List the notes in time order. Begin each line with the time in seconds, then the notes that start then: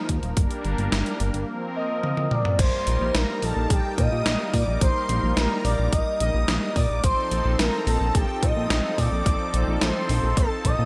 Already playing: F3 A#3 D#4 A#4
0.09 D#2, kick, closed hi-hat
0.23 D#1, closed hi-hat
0.37 G1 G3 A#3 D4 A#4, kick, closed hi-hat
0.51 closed hi-hat
0.65 G1, closed hi-hat
0.78 G1, closed hi-hat
0.92 G1, snare, closed hi-hat
1.06 closed hi-hat
1.20 G1, closed hi-hat
1.34 G1, closed hi-hat
1.48 F3 C4 A#4
1.76 D#5
2.03 high tom
2.17 high tom
2.31 D5, mid tom
2.45 mid tom
2.59 A#1 G3 A#3 D#4 A#4 C5 C6, kick, closed hi-hat, crash
2.87 A#1, closed hi-hat
3.01 A#1
3.15 A#1 A#4 A#5, snare, closed hi-hat
3.42 A#1 A4 A5, open hi-hat
3.56 A#1
3.70 A#1 G4 G5, kick, closed hi-hat
3.98 A#2 D#5 D#6, kick, closed hi-hat
4.12 A#2
4.26 A#1, snare, closed hi-hat
4.53 A#2 D5 D6, kick, open hi-hat
4.67 A#1
4.81 A#1 C5 C6, kick, closed hi-hat
5.09 A#1, closed hi-hat
5.23 A#1
5.37 A#1 A#4 A#5, snare, closed hi-hat
5.65 A#1 D5 D6, open hi-hat
5.79 A#1
5.93 A#1 D#5 D#6, kick, closed hi-hat
6.20 A#1 D#5 D#6, closed hi-hat
6.34 A#1
6.48 A#1, snare, closed hi-hat
6.76 A#2 D5 D6, kick, open hi-hat
6.90 A#1
7.04 A#1 F3 C4 D#4 A4 C5 C6, kick, closed hi-hat
7.31 A#1, closed hi-hat
7.45 A#1
7.59 A#1 A#4 A#5, snare, closed hi-hat
7.87 A#1 A4 A5, open hi-hat
8.01 A#1
8.15 A#1 G4 G5, kick, closed hi-hat
8.43 A#2 D#5 D#6, kick, closed hi-hat
8.56 A#2
8.70 A#1, snare, closed hi-hat
8.98 A#2 D5 D6, kick, open hi-hat
9.12 A#1
9.26 A#1, kick, closed hi-hat
9.54 A#1, closed hi-hat
9.68 A#1
9.81 A#1 C5 C6, snare, closed hi-hat
10.09 A#1, open hi-hat
10.23 A#1
10.37 A#1 A4 A5, kick, closed hi-hat
10.65 A#1 D#5 D#6, kick, closed hi-hat
10.79 A#2